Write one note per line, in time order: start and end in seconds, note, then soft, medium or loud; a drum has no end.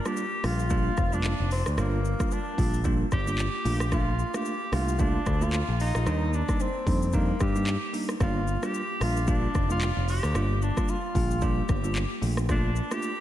0.05 0.24 G3 medium
0.05 0.24 A#3 medium
0.05 0.24 D4 medium
0.05 0.24 F4 medium
0.05 0.46 G4 loud
0.05 cross-stick medium
0.05 shaker medium
0.17 shaker medium
0.43 0.88 A#1 medium
0.43 0.64 G3 medium
0.43 0.64 A#3 medium
0.43 0.64 D4 medium
0.43 0.64 F4 medium
0.43 1.15 F4 loud
0.43 cross-stick loud
0.43 open hi-hat medium
0.43 shaker soft
0.59 shaker medium
0.70 0.91 G3 loud
0.70 0.91 A#3 medium
0.70 0.91 D4 medium
0.70 0.91 F4 loud
0.70 kick loud
0.70 shaker medium
0.97 1.33 F1 medium
0.97 kick loud
0.97 cross-stick medium
0.97 shaker medium
1.13 1.31 G3 medium
1.13 1.31 A#3 medium
1.13 1.31 D4 medium
1.13 1.51 D4 loud
1.13 1.31 F4 medium
1.13 shaker medium
1.24 clap medium
1.24 shaker medium
1.40 1.62 F1 medium
1.51 1.64 C4 medium
1.51 open hi-hat medium
1.51 shaker medium
1.66 1.76 D2 medium
1.66 cross-stick loud
1.66 shaker medium
1.77 2.13 G1 loud
1.77 1.98 G3 loud
1.77 1.98 A#3 medium
1.77 2.34 A#3 medium
1.77 1.98 D4 medium
1.77 1.98 F4 loud
1.77 cross-stick loud
1.77 shaker medium
2.05 shaker medium
2.20 2.38 G3 medium
2.20 2.38 A#3 medium
2.20 2.38 D4 medium
2.20 2.38 F4 medium
2.20 kick medium
2.20 cross-stick medium
2.20 shaker medium
2.31 2.86 D4 medium
2.31 shaker medium
2.58 3.03 A#1 medium
2.58 2.78 G3 medium
2.58 2.79 A#3 medium
2.58 2.79 D4 medium
2.58 2.79 F4 medium
2.58 kick medium
2.58 open hi-hat medium
2.58 shaker soft
2.74 shaker medium
2.84 3.05 G3 medium
2.84 3.05 A#3 medium
2.84 3.05 D4 medium
2.84 3.05 F4 loud
2.84 kick loud
2.84 shaker medium
3.11 3.47 G1 loud
3.11 3.95 G4 loud
3.11 kick loud
3.11 cross-stick medium
3.11 shaker medium
3.27 3.45 G3 medium
3.27 3.45 A#3 medium
3.27 3.45 D4 medium
3.27 3.45 F4 medium
3.27 shaker medium
3.39 clap medium
3.39 shaker medium
3.65 4.23 A#1 loud
3.65 3.85 A3 medium
3.65 3.86 A#3 medium
3.65 3.86 D4 medium
3.65 3.86 F4 medium
3.65 open hi-hat medium
3.65 shaker medium
3.80 cross-stick loud
3.80 shaker medium
3.92 4.12 A3 medium
3.92 4.12 A#3 medium
3.92 4.13 D4 medium
3.92 4.13 F4 loud
3.92 4.37 F4 loud
3.92 kick loud
3.92 cross-stick loud
3.92 shaker medium
4.19 shaker medium
4.34 4.52 A3 medium
4.34 4.52 A#3 medium
4.34 4.52 D4 medium
4.34 4.53 F4 medium
4.34 4.75 G4 loud
4.34 cross-stick loud
4.34 shaker medium
4.45 shaker medium
4.72 5.17 C2 medium
4.72 4.93 A3 medium
4.72 4.93 A#3 medium
4.72 4.93 D4 medium
4.72 4.93 F4 medium
4.72 5.02 F4 loud
4.72 cross-stick loud
4.72 open hi-hat medium
4.72 shaker soft
4.88 shaker medium
4.99 5.20 A3 medium
4.99 5.20 A#3 medium
4.99 5.20 D4 medium
4.99 5.44 D4 loud
4.99 5.20 F4 loud
4.99 kick loud
4.99 shaker medium
5.26 5.61 D2 loud
5.26 kick loud
5.26 cross-stick medium
5.26 shaker medium
5.41 5.59 A3 medium
5.41 5.59 A#3 medium
5.41 5.60 D4 medium
5.41 5.60 F4 medium
5.41 5.80 F4 loud
5.41 shaker medium
5.53 clap loud
5.53 shaker medium
5.68 5.91 A#1 medium
5.80 6.36 D#4 loud
5.80 open hi-hat medium
5.80 shaker medium
5.95 6.04 A#1 medium
5.95 cross-stick loud
5.95 shaker medium
6.06 6.41 D#2 loud
6.06 6.27 G3 medium
6.06 6.27 A#3 medium
6.06 6.27 D4 medium
6.06 6.27 D#4 loud
6.06 cross-stick loud
6.06 shaker medium
6.33 6.63 D4 medium
6.33 shaker medium
6.49 6.67 G3 medium
6.49 6.67 A#3 medium
6.49 6.67 D4 medium
6.49 6.67 D#4 medium
6.49 kick medium
6.49 cross-stick medium
6.49 shaker medium
6.60 7.16 C4 medium
6.60 shaker medium
6.86 7.31 F2 loud
6.86 7.07 G3 medium
6.86 7.07 A#3 medium
6.86 7.07 D4 medium
6.86 7.07 D#4 medium
6.86 kick medium
6.86 open hi-hat medium
6.86 shaker soft
7.02 shaker medium
7.13 7.34 G3 loud
7.13 7.34 A#3 medium
7.13 7.43 A#3 medium
7.13 7.34 D4 medium
7.13 7.34 D#4 loud
7.13 kick loud
7.13 shaker medium
7.40 7.76 G2 medium
7.40 7.94 G4 loud
7.40 kick loud
7.40 cross-stick medium
7.40 shaker medium
7.55 7.74 G3 medium
7.55 7.74 A#3 medium
7.55 7.74 D4 medium
7.55 7.74 D#4 medium
7.55 shaker medium
7.67 clap medium
7.67 shaker medium
7.93 8.14 G3 medium
7.93 8.14 A#3 medium
7.93 8.14 D4 medium
7.93 8.14 D#4 medium
7.93 open hi-hat medium
7.93 shaker medium
8.09 cross-stick loud
8.09 shaker medium
8.20 8.56 G1 loud
8.20 8.41 G3 medium
8.20 8.41 A#3 medium
8.20 8.41 D4 medium
8.20 8.41 F4 loud
8.20 8.66 F4 loud
8.20 kick loud
8.20 cross-stick loud
8.20 shaker medium
8.48 shaker medium
8.62 8.81 G3 medium
8.62 8.81 A#3 medium
8.62 8.81 D4 medium
8.62 8.81 F4 medium
8.62 9.04 G4 loud
8.62 cross-stick medium
8.62 shaker medium
8.74 shaker medium
9.00 9.45 A#1 medium
9.00 9.21 G3 medium
9.00 9.21 A#3 medium
9.00 9.21 D4 medium
9.00 9.22 F4 medium
9.00 9.30 F4 loud
9.00 cross-stick loud
9.00 open hi-hat medium
9.00 shaker medium
9.17 shaker medium
9.27 9.48 G3 medium
9.27 9.48 A#3 medium
9.27 9.48 D4 medium
9.27 9.71 D4 loud
9.27 9.48 F4 loud
9.27 kick loud
9.27 shaker medium
9.55 9.90 F1 medium
9.55 kick loud
9.55 cross-stick medium
9.55 shaker medium
9.70 9.88 G3 medium
9.70 9.88 A#3 medium
9.70 9.88 D4 medium
9.70 9.88 F4 medium
9.70 10.06 F4 loud
9.70 shaker medium
9.81 clap loud
9.81 shaker medium
9.97 10.19 F1 medium
10.08 10.64 G4 loud
10.08 open hi-hat medium
10.08 shaker medium
10.23 10.33 D2 medium
10.23 cross-stick loud
10.23 shaker medium
10.35 10.70 G1 loud
10.35 10.55 G3 medium
10.35 10.55 A#3 medium
10.35 10.55 D4 medium
10.35 10.55 F4 loud
10.35 cross-stick loud
10.35 shaker medium
10.62 10.91 D4 medium
10.62 shaker medium
10.77 10.95 G3 medium
10.77 10.95 A#3 medium
10.77 10.95 D4 medium
10.77 10.95 F4 medium
10.77 kick medium
10.77 cross-stick medium
10.77 shaker medium
10.88 11.45 F4 loud
10.88 shaker medium
11.15 11.60 A#1 medium
11.15 11.35 G3 medium
11.15 11.36 A#3 medium
11.15 11.36 D4 medium
11.15 11.36 F4 medium
11.15 kick medium
11.15 open hi-hat medium
11.15 shaker soft
11.31 shaker medium
11.41 11.62 G3 loud
11.41 11.62 A#3 medium
11.41 11.62 D4 medium
11.41 11.62 F4 loud
11.41 12.23 G4 medium
11.41 kick medium
11.41 shaker medium
11.69 12.04 G1 loud
11.69 kick medium
11.69 cross-stick medium
11.69 shaker medium
11.84 12.02 G3 medium
11.84 12.02 A#3 medium
11.84 12.02 D4 medium
11.84 12.03 F4 medium
11.84 shaker medium
11.96 clap loud
11.96 shaker medium
12.22 12.80 A#1 loud
12.22 12.42 A3 medium
12.22 12.43 A#3 medium
12.22 12.43 D4 medium
12.22 12.43 F4 medium
12.22 open hi-hat medium
12.22 shaker medium
12.37 cross-stick loud
12.37 shaker medium
12.49 12.69 A3 medium
12.49 12.70 A#3 medium
12.49 12.70 D4 medium
12.49 12.94 D4 loud
12.49 12.70 F4 loud
12.49 kick loud
12.49 cross-stick medium
12.49 shaker medium
12.76 shaker medium
12.91 13.09 A3 medium
12.91 13.10 A#3 medium
12.91 13.10 D4 medium
12.91 13.10 F4 medium
12.91 13.20 G4 loud
12.91 cross-stick medium
12.91 shaker medium
13.02 shaker medium